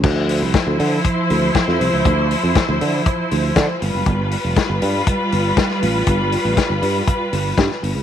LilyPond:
<<
  \new Staff \with { instrumentName = "String section" } { \time 4/4 \key d \dorian \tempo 4 = 119 <f e' c''>1~ | <f e' c''>2.~ <f e' c''>8 <g f' b'>8~ | <g f' b'>1~ | <g f' b'>1 | }
  \new Staff \with { instrumentName = "Fretless electric bass" } { \clef bass \time 4/4 \key d \dorian d,8. c,16 r16 d,16 d8 r8 d,8 r16 f,16 c,16 cis,16 | d,8. f,16 r16 d,16 d8 r8 d,8 d16 r16 g,,16 fis,,16 | g,,8. f,,16 r16 g,,16 g,8 r8 g,,8 r8 a,,8 | g,,8. a,,16 r16 g,,16 g,8 r8 g,,8 g,16 r16 g,,16 cis,16 | }
  \new DrumStaff \with { instrumentName = "Drums" } \drummode { \time 4/4 <cymc bd>8 hho8 <hh bd sn>8 hho8 <hh bd>8 hho8 <hh bd sn>16 sn16 hho8 | <hh bd>8 hho8 <hh bd sn>8 hho8 <hh bd>8 hho8 <hh bd sn>8 hho8 | <hh bd>8 hho8 <hh bd sn>8 hho8 <hh bd>8 hho8 <hh bd sn>16 sn16 hho8 | <hh bd>8 hho8 <hh bd sn>8 hho8 <hh bd>8 hho8 <hh bd sn>16 sn16 hho8 | }
>>